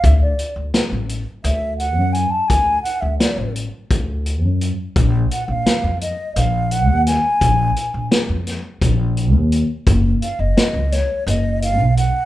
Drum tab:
HH |xxxxxxx|xxxxxxx|xxxxxxx|xxxxxxx|
SD |--o----|--o----|--o---o|--oo---|
BD |o------|o---o--|o------|o---o--|

HH |xxxxxxx|
SD |--oo---|
BD |o------|